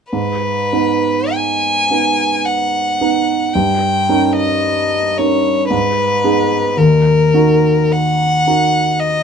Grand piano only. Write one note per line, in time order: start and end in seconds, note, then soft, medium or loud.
0.13 0.70 G#2 soft
0.73 1.86 B3 soft
0.73 1.86 D#4 soft
0.73 1.86 B4 soft
1.90 2.96 B3 soft
1.90 2.96 D#4 soft
1.90 2.96 B4 soft
3.00 3.50 B3 soft
3.00 3.50 D#4 soft
3.00 3.51 B4 soft
3.55 4.07 G2 soft
4.09 5.15 C#4 soft
4.09 5.15 D#4 soft
4.09 5.15 A#4 soft
5.19 5.68 C#4 soft
5.19 5.68 D#4 soft
5.19 5.68 A#4 soft
5.70 6.22 G#2 soft
6.24 6.74 B3 soft
6.24 6.74 D#4 soft
6.24 6.74 G#4 soft
6.77 7.33 D#2 soft
7.34 8.43 D#4 soft
7.34 8.43 F#4 soft
7.34 8.43 A#4 soft
8.47 9.23 D#4 soft
8.47 9.23 F#4 soft
8.47 9.23 A#4 soft